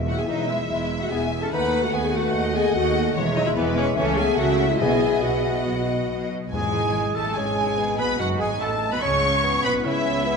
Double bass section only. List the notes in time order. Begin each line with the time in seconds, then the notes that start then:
Already playing: E1
0.29 E1
0.70 E1
1.11 E1
1.52 D#2
1.93 D#2
2.34 D#2
2.75 D#2
3.15 E1
3.56 E1
3.97 C#2
4.38 C#2
4.81 B1
5.24 B1
5.67 B1
6.10 B1
6.53 G#1
7.16 A1
7.36 G#1
7.99 B1
8.20 F#1
8.40 G#1
8.60 A1
9.02 C#2
9.65 B1
9.86 C#2